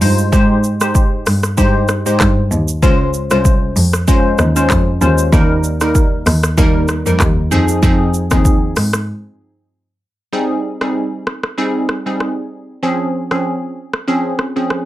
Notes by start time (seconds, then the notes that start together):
0.01 G2 G#3 D#4 F4 C5, open hi-hat, shaker
0.18 shaker
0.32 G#2 G#3 D#4 G4 C5, kick, shaker
0.64 shaker
0.81 G#3 D#4 G4 C5, cross-stick, shaker
0.95 kick, shaker
1.26 G2, cross-stick, open hi-hat, shaker
1.43 cross-stick, shaker
1.57 G2 G#3 D#4 G4 C5, kick, shaker
1.88 cross-stick, shaker
2.06 G#2 G#3 D#4 G4 C5, shaker
2.20 G2, kick, cross-stick, clap, shaker
2.52 D#2, shaker
2.68 shaker
2.82 C#2 G#3 C#4 F4 C5, kick, shaker
3.14 shaker
3.31 C2 G#3 C#4 F4 C5, cross-stick, shaker
3.45 kick, shaker
3.76 F2, open hi-hat, shaker
3.93 cross-stick, shaker
4.07 G#3 C#4 F4 C5, kick, shaker
4.38 D#2, cross-stick, shaker
4.56 G#3 C#4 F4 C5, shaker
4.70 F2, kick, cross-stick, clap, shaker
5.01 D#2 G#3 C#4 F4 C5, shaker
5.18 shaker
5.32 D#2 G3 A#3 D#4 A#4, kick, shaker
5.64 shaker
5.81 G3 A#3 D#4 A#4, cross-stick, shaker
5.95 kick, shaker
6.26 D#2, cross-stick, open hi-hat, shaker
6.43 cross-stick, shaker
6.57 D#2 G3 A#3 D#4 A#4, kick, shaker
6.88 cross-stick, shaker
7.06 F2 G3 A#3 D#4 A#4, shaker
7.20 D#2, kick, cross-stick, clap, shaker
7.51 F2 F3 C4 D#4 G#4, shaker
7.68 shaker
7.82 F2 F3 C4 D#4 G#4, kick, shaker
8.14 shaker
8.31 D#2 F3 C4 D#4 G#4, kick, cross-stick, shaker
8.45 kick, shaker
8.76 G#2, cross-stick, open hi-hat, shaker
8.93 cross-stick, shaker
10.32 G3 C4 D#4 G#4
10.81 G3 C4 D#4 G#4, cross-stick
11.27 cross-stick
11.43 cross-stick
11.58 G3 C4 D#4 G#4
11.89 cross-stick
12.06 G3 C4 D#4 G#4
12.20 cross-stick
12.83 F3 C4 C#4 G#4
13.31 F3 C4 C#4 G#4, cross-stick
13.94 cross-stick
14.07 F3 C4 C#4 G#4
14.39 cross-stick
14.56 F3 C4 C#4 G#4
14.70 cross-stick